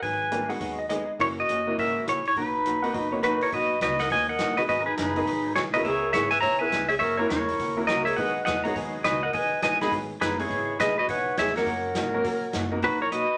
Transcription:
0.02 G#1 D#3 F#3 B3 D#4 G#4 B4 G#5, kick, open hi-hat
0.31 D#3 F#3 G3 A#3 B3 D4 D#4 F4 G#4, closed hi-hat
0.49 G#3 B3 D#4 F#4 F#5, open hi-hat
0.60 D#2 D#3 F#3 B3 D#4 G#4, kick, open hi-hat
0.79 D#5
0.89 D#3 F#3 G#3 B3 D#4 G#4 D#5, cross-stick, closed hi-hat
1.19 F#1 C#3 E3 A#3 C#4 E4 F#4 C#5, kick, open hi-hat
1.39 F#4 D#5
1.49 F#1 C#3 E3 A#3 C#4 F#4, closed hi-hat
1.67 A#3 C#4 E4 F#4
1.78 G#1 C#3 E3 A#3 C#4 F#4 A#4 E5, kick, open hi-hat
2.07 A#1 C#3 E3 A#3 C#4 E4 F#4 C#5, cross-stick, closed hi-hat
2.25 E4 C#5, open hi-hat
2.36 B1 B2 F#3 A#3 D#4 F#4 B4, kick, open hi-hat
2.65 B2 F#3 A#3 D#4 F#4, closed hi-hat
2.83 A#3 B3 D#4 F#4 F#5, open hi-hat
2.93 F#1 B2 F#3 A#3 D#4 F#4 D#5, kick, open hi-hat
3.12 A#3 B3 D#4 F#4 C#5
3.23 B2 F#3 A#3 D#4 F#4 B4, cross-stick, closed hi-hat
3.41 E4 A#4 C#5, open hi-hat
3.52 B1 B2 F#3 A#3 D#4 F#4 B4 D#5, kick, open hi-hat
3.81 C#2 B2 F#3 A#3 D#4 F#4 B4 D#5, snare, closed hi-hat
3.99 A#4 D#5 F#5, snare, open hi-hat
4.10 D#2 B2 F#3 A#3 D#4 F#4 B4 D#5 G#5, kick, open hi-hat
4.29 A#4 D#5 F#5
4.39 A#1 B2 F#3 A#3 D#4 F#4, snare, closed hi-hat
4.57 B3 D#4 F#4 G#4 B4 D#5, open hi-hat
4.69 G#1 D#3 F#3 B3 D#4 F#4 G#4 B4 D#5, kick, open hi-hat
4.81 C#4 A#4
4.86 D#4 G#4 B4
4.97 F#1 D#3 F#3 B3 D#4 G#4 B4, snare, closed hi-hat
5.16 B3 D#4 F#4 G#4 B4, open hi-hat
5.26 G#1 D#3 F#3 B3 D#4 G#4, kick, open hi-hat
5.55 B1 D#3 F#3 B3 D#4 F#4 G#4 C#5, snare, closed hi-hat
5.74 B3 C#4 E4 F#4 G#4 A#4 B4 D#5, open hi-hat
5.84 C#2 C#3 G#3 B3 E4 G#4 C#5 E5, kick, open hi-hat
6.13 G#1 C#3 G#3 B3 C#4 E4 G#4 B4 C#5 E5, snare, closed hi-hat
6.31 B4 E5 G#5, open hi-hat
6.41 B1 C#3 G#3 B3 E4 G#4 C#5 E5 A#5, kick, open hi-hat
6.59 B3 C#4 E4 G#4 B4 E5 G#5
6.71 C#2 C#3 G#3 B3 E4 G#4, snare, closed hi-hat
6.89 G#4 C#5 E5, open hi-hat
6.99 F#2 C#3 E3 A#3 C#4 F#4 A#4 C#5 E5, kick, open hi-hat
7.17 A#3 C#4 E4 F#4 A#4 C#5
7.29 E2 C#3 E3 A#3 C#4 E4 F#4 A#4 C#5, snare, closed hi-hat
7.48 open hi-hat
7.59 D#2 C#3 E3 A#3 C#4 F#4, kick, open hi-hat
7.77 A#3 C#4 E4 F#4 A#4
7.87 C#2 C#3 E3 A#3 C#4 F#4 A#4 D#5, snare, closed hi-hat
8.05 G#4 C#5 E5, open hi-hat
8.16 B1 B2 D#3 F#3 G#3 B3 D#4 F#4 G#4 B4 D#5 F#5, kick, open hi-hat
8.45 E2 B2 D#3 F#3 B3 D#4 G#4 B4 D#5 F#5, snare, closed hi-hat
8.64 G#3 B3 D#4 F#4 G#4 C#5 F#5 A#5, open hi-hat
8.75 D#2 B2 D#3 F#3 B3 D#4 G#4, kick, open hi-hat
9.04 C#2 B2 D#3 F#3 B3 D#4 F#4 G#4 B4 D#5, snare, closed hi-hat
9.23 A#4 D#5 F#5
9.33 B1 D#3 F#3 B3 D#4 G#4 B4 D#5 G#5, kick, open hi-hat
9.52 muted upright bass stroke
9.62 A#1 D#3 F#3 B3 D#4 G#4 B4 D#5 G#5, snare, closed hi-hat
9.81 G#3 B3 D#4 F#4 G#4 D#5 G#5 B5, snare, open hi-hat
9.92 G#1 D#3 F#3 B3 D#4 G#4, kick, open hi-hat
10.21 F#1 D#3 F#3 B3 D#4 G#4 B4, snare, closed hi-hat
10.39 G#3 B3 C#4 E4 G#4 C#5, open hi-hat
10.50 G#1 C#3 G#3 B3 E4 G#4, kick, open hi-hat
10.79 A#1 C#3 G#3 B3 E4 G#4 B4 D#5, snare, closed hi-hat
10.98 F#4 B4 D#5
11.08 B1 C#3 G#3 B3 E4 G#4 B4 C#5 F#5, kick, open hi-hat
11.37 E2 C#3 G#3 B3 E4 G#4 C#5 E5, snare, closed hi-hat
11.47 snare
11.55 F#3 A#3 C#4 F#4 A#4 C#5 F#5, snare, open hi-hat
11.66 F#2 C#3 F#3 A#3 C#4 F#4, kick, open hi-hat
11.95 G#2 C#3 F#3 A#3 C#4 F#4, snare, closed hi-hat
12.14 F#3 A#3 C#4 F#4 A#4
12.24 A#2 C#3 F#3 A#3 C#4 F#4, kick, open hi-hat
12.53 F#2 C#3 F#3 A#3 C#4 F#4, snare, closed hi-hat
12.72 A#3 B3 D#4 F#4 A#4
12.82 B1 B2 F#3 A#3 D#4 F#4 B4, kick, open hi-hat
13.02 E4 A#4 C#5
13.10 B2 F#3 A#3 D#4 F#4 B4 D#5, closed hi-hat

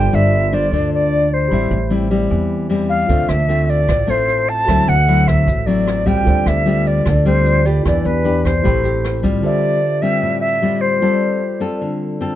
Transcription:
Already playing: G1 G3 F4 A4 C5 D5 G5
0.13 G1 D4 F4 C5 E5
0.52 D4 F4 C5 D5
0.71 D2 D3 D4 F4 C5
0.94 D5
1.34 C5
1.48 A1 A2 G3 C4 G4 C5 B5
1.52 E4 E5
1.71 A1
1.90 G3 C4 E4
2.10 G3 C4 E4
2.30 E2 E3
2.69 G3 C4 E4
2.89 F5
3.07 D2 D3 A3 C4 F4 A4 C5, kick, closed hi-hat
3.12 E5
3.29 D2 E5, cross-stick, closed hi-hat
3.48 A3 C4 F4, closed hi-hat
3.69 D5, closed hi-hat
3.88 A1 A2, kick, cross-stick, closed hi-hat
4.07 A3 C4 F4 A4 C5, closed hi-hat
4.11 E5
4.28 closed hi-hat
4.48 A5, closed hi-hat
4.65 D2 D3 F#4 A4 C5, kick, cross-stick, closed hi-hat
4.69 F#3 C4 E4 E5
4.88 D2 F#5, closed hi-hat
5.08 F#3 C4 E4, closed hi-hat
5.28 E5, kick, cross-stick, closed hi-hat
5.47 A1 A2, kick, closed hi-hat
5.66 F#3 C4 E4 D5, closed hi-hat
5.87 cross-stick, closed hi-hat
6.06 G3 C4 F4 G5, kick, closed hi-hat
6.24 D2 D3 F4 A4, kick, closed hi-hat
6.28 C5 D5
6.46 D2 E5, cross-stick, closed hi-hat
6.66 G3 C4 F4, closed hi-hat
6.86 D5, closed hi-hat
7.05 D2 D3, kick, cross-stick, closed hi-hat
7.25 G3 C4 F4 C5, closed hi-hat
7.43 F4 A4 D5, closed hi-hat
7.65 D4 G4 B4 D5, closed hi-hat
7.83 E2 E3 E4 G4 D5, kick, cross-stick, closed hi-hat
7.87 B4 D5
8.05 E2 B4, closed hi-hat
8.24 D4 G4 B4, closed hi-hat
8.45 C5, kick, cross-stick, closed hi-hat
8.62 A1 A3 C4 E4 G4 B4 B5, kick, closed hi-hat
8.84 C4 G4, closed hi-hat
9.05 cross-stick, closed hi-hat
9.23 G3 C4 F4, kick, closed hi-hat
9.40 D3 F4 G4
9.45 C5 D5 E5
10.02 G3 C4 F4 E5
10.22 A2
10.41 E5
10.62 G3 C4 F4
10.81 C5
10.99 G3 C4 F4 A4
11.03 C5 D5
11.60 C4 F4 A4
11.81 D3
12.21 C4 F4 A4

